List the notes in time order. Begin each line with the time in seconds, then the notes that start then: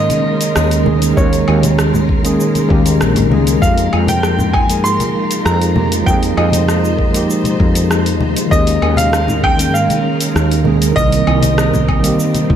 Already playing: D#3 G#3 A#3 C#4 D#4 G#4 A#4 D#5 C6
0.10 open hi-hat, high conga, cabasa
0.41 open hi-hat, cabasa
0.56 D#2, cross-stick, cabasa
0.71 open hi-hat, cabasa
0.84 D#3 G#3 A#3 C#4, high conga
0.88 G#4
1.02 open hi-hat, cabasa
1.13 D#3 G#3 A#3
1.17 D#2 C#4 A#4 C#5, kick, cabasa
1.33 open hi-hat, cabasa
1.48 D#2, low woodblock
1.63 open hi-hat, high conga, cabasa
1.79 cross-stick, cabasa
1.94 low conga, cabasa
2.09 kick
2.22 D#3 G#3 A#3 C#4 G#4, open hi-hat, cabasa
2.40 cabasa
2.55 open hi-hat, high conga, cabasa
2.68 D#2 D#3 G#3 A#3 C#4 G4, kick
2.86 open hi-hat, cabasa
3.01 A#1, cross-stick, cabasa
3.16 open hi-hat, low conga, cabasa
3.29 C#2 D#3 G#3 A#3 C#4 G#4, high conga
3.47 open hi-hat, cabasa
3.58 F3 G#3 A#3
3.62 F2 D#4 F4 G4 F5, kick, cabasa
3.78 open hi-hat, cabasa
3.93 F2, low woodblock
4.08 G5, open hi-hat, high conga, cabasa
4.23 cross-stick, cabasa
4.38 low conga, cabasa
4.53 G#5, kick, low woodblock
4.67 F3 G#3 A#3 D#4 G#4, open hi-hat, cabasa
4.84 G#2 C6, cabasa
5.00 open hi-hat, high conga, cabasa
5.31 open hi-hat, cabasa
5.45 F2 A#5, cross-stick, cabasa
5.62 open hi-hat, cabasa
5.74 F3 G#3 A#3 D#4 G4, high conga
5.92 open hi-hat, cabasa
6.02 F3 G#3
6.06 F2 A#3 D#4 G#4 C5 G5, kick, cabasa
6.23 open hi-hat, cabasa
6.37 F2 D#5, low woodblock
6.52 open hi-hat, high conga, cabasa
6.68 cross-stick, cabasa
6.85 cabasa
6.99 kick
7.09 F3 G#3 A#3
7.14 D#4 G4, open hi-hat, cabasa
7.30 cabasa
7.44 open hi-hat, high conga, cabasa
7.60 F2, kick
7.75 open hi-hat, cabasa
7.91 cross-stick, cabasa
8.06 open hi-hat, cabasa
8.21 D#2, high conga
8.37 open hi-hat, cabasa
8.47 D#3 G#3 A#3
8.51 D#2 G#3 C#4 A#4 D#5, kick, cabasa
8.55 G#4
8.67 open hi-hat, cabasa
8.82 D#2, low woodblock
8.97 F5, open hi-hat, high conga, cabasa
9.13 cross-stick, cabasa
9.28 low conga, cabasa
9.44 G5, kick, low woodblock
9.57 D#3 G#3 A#3 C#4, open hi-hat, cabasa
9.61 A#4
9.74 G#2 F5, cabasa
9.89 open hi-hat, high conga, cabasa
10.21 open hi-hat, cabasa
10.35 D#2, cross-stick, cabasa
10.51 open hi-hat, cabasa
10.63 D#3 G#3 A#3 C#4 G#4, high conga
10.82 open hi-hat, cabasa
10.92 D#3 G3 A#3 D#5
10.97 C2 G3 C4 D#4 A#4, kick, cabasa
11.12 open hi-hat, cabasa
11.27 C2, low woodblock
11.42 open hi-hat, high conga, cabasa
11.58 cross-stick, cabasa
11.73 low conga, cabasa
11.89 kick, low woodblock
11.99 D#3 G3
12.04 A#3 C4, open hi-hat, cabasa
12.08 G4
12.20 cabasa
12.35 open hi-hat, high conga, cabasa
12.50 C2, kick